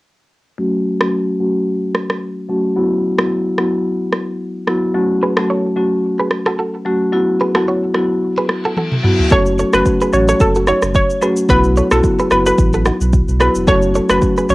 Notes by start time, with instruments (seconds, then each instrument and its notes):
0.58 marimba F#3 A3 C#4 F#4
1.00 marimba F#3 A3 C#4 F#4, cross-stick
1.40 marimba F#3 A3 C#4 F#4
1.95 cross-stick
2.10 cross-stick
2.49 marimba F#3 A3 C#4 F#4
2.76 marimba F#3 B3 E4 F#4
3.19 marimba F#3 B3 E4 F#4, cross-stick
3.58 marimba F#3 B3 E4 F#4, cross-stick
4.13 cross-stick
4.67 marimba F#3 B3 E4 F#4, cross-stick
4.94 marimba F#3 A3 C#4 F#4
5.23 clean electric guitar G#4 B4
5.37 marimba F#3 A3 C#4 F#4, clean electric guitar F#4 A4, cross-stick
5.50 clean electric guitar A4 C#5
5.76 marimba F#3 A3 C#4 F#4
6.19 clean electric guitar G#4 B4
6.31 cross-stick
6.46 clean electric guitar F#4 A4, cross-stick
6.59 clean electric guitar F#4 A4
6.85 marimba F#3 A3 C#4 F#4
7.12 marimba F#3 B3 E4 F#4
7.41 clean electric guitar G#4 B4
7.55 marimba F#3 B3 E4 F#4, clean electric guitar F#4 A4, cross-stick
7.68 clean electric guitar F#4 C#5
7.94 marimba F#3 B3 E4 F#4, cross-stick
8.22 reverse cymbal
8.38 clean electric guitar G#4 B4
8.49 cross-stick
8.65 clean electric guitar F#4 A4
8.77 clean electric guitar F#4 A4, high tom
8.92 mid tom
9.03 marimba F#3 B3 E4 F#4, mid tom
9.19 floor tom
9.31 sub bass F#1, marimba F#3 A3 C#4 F#4, clean electric guitar F#4 A4, synth pluck C#5, kick, shaker
9.46 shaker
9.59 clean electric guitar A4 C#5, shaker
9.73 sub bass F#1, marimba F#3 A3 C#4 F#4, synth pluck B4, cross-stick, shaker
9.85 kick, shaker
10.01 clean electric guitar G#4 B4, shaker
10.12 sub bass A1, marimba F#3 A3 C#4 F#4, synth pluck C#5, shaker
10.28 clean electric guitar F#4 A4, synth pluck C#5, shaker
10.40 sub bass F#1, synth pluck A4, kick, shaker
10.55 clean electric guitar F#4 A4, shaker
10.67 clean electric guitar D#4 F#4, synth pluck C#5, cross-stick, shaker
10.82 sub bass F#1, cross-stick, shaker
10.95 synth pluck C#5, kick, shaker
11.10 shaker
11.22 marimba F#3 A3 C#4 F#4, clean electric guitar G#4 B4, shaker
11.37 shaker
11.49 sub bass B1, marimba F#3 B3 E4 F#4, clean electric guitar B3 F#4, synth pluck B4, kick, shaker
11.64 shaker
11.77 clean electric guitar A4 C#5, shaker
11.91 sub bass B1, marimba F#3 B3 E4 F#4, synth pluck A4, cross-stick, shaker
12.04 kick, shaker
12.19 clean electric guitar G#4 B4, shaker
12.31 sub bass F#1, marimba F#3 B3 E4 F#4, synth pluck B4, cross-stick, shaker
12.46 clean electric guitar F#4 A4, synth pluck B4, shaker
12.58 sub bass A1, kick, shaker
12.73 clean electric guitar F#4 A4, shaker
12.85 clean electric guitar D#4 F#4, cross-stick, shaker
13.01 sub bass B1, shaker
13.13 kick, shaker
13.28 sub bass B1, shaker
13.40 marimba F#3 B3 E4 F#4, clean electric guitar G#4 B4, synth pluck B4, cross-stick, shaker
13.55 sub bass E1, shaker
13.67 sub bass F#1, marimba F#3 A3 C#4 F#4, clean electric guitar F#4 A4, synth pluck C#5, kick, shaker
13.82 shaker
13.95 clean electric guitar A4 C#5, shaker
14.09 sub bass F#1, marimba F#3 A3 C#4 F#4, synth pluck B4, cross-stick, shaker
14.22 kick, shaker
14.37 clean electric guitar G#4 B4, shaker
14.49 sub bass A1, marimba F#3 A3 C#4 F#4, synth pluck C#5, shaker